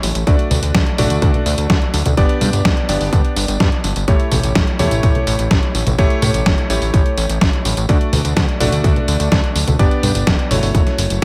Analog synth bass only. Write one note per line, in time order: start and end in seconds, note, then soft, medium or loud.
0.03 0.12 A1 medium
0.15 0.24 A1 medium
0.27 0.36 D2 loud
0.51 0.60 D2 loud
0.63 0.72 D2 medium
0.75 0.84 D2 loud
0.98 1.08 A1 medium
1.10 1.19 D2 medium
1.22 1.31 D2 loud
1.46 1.55 D2 loud
1.58 1.67 D2 medium
1.70 1.79 D2 loud
1.94 2.03 D2 medium
2.06 2.15 D2 medium
2.17 2.27 G1 loud
2.41 2.50 G2 loud
2.53 2.62 G1 medium
2.65 2.74 D1 loud
2.89 2.98 G1 medium
3.01 3.10 G1 medium
3.13 3.22 G1 loud
3.36 3.46 G1 loud
3.48 3.58 G1 medium
3.60 3.69 G2 loud
3.84 3.93 G1 medium
3.96 4.05 G1 medium
4.08 4.17 A1 loud
4.32 4.41 A1 loud
4.44 4.53 A1 medium
4.56 4.65 A1 loud
4.79 4.89 E2 medium
4.91 5.00 A1 medium
5.03 5.12 A1 loud
5.27 5.36 A1 loud
5.39 5.48 A1 medium
5.51 5.60 A1 loud
5.75 5.84 A1 medium
5.86 5.96 A1 medium
5.98 6.08 A1 loud
6.22 6.31 A2 loud
6.34 6.43 A1 medium
6.46 6.55 G1 loud
6.70 6.79 A1 loud
6.82 6.91 A1 medium
6.94 7.03 A1 loud
7.18 7.27 A1 loud
7.29 7.39 A1 medium
7.41 7.50 A1 loud
7.65 7.74 A1 loud
7.77 7.86 A1 medium
7.89 7.98 D2 loud
8.13 8.22 D2 loud
8.25 8.34 D2 medium
8.37 8.46 D2 loud
8.60 8.69 A1 medium
8.72 8.81 D2 medium
8.84 8.93 D2 loud
9.08 9.17 D2 loud
9.20 9.29 D2 medium
9.32 9.41 D2 loud
9.55 9.65 D2 medium
9.67 9.77 D2 medium
9.79 9.88 G1 loud
10.03 10.12 G2 loud
10.15 10.24 G1 medium
10.27 10.36 D1 loud
10.51 10.60 G1 medium
10.63 10.72 G1 medium
10.75 10.84 F#1 loud
10.98 11.08 F#1 loud
11.10 11.19 F#1 medium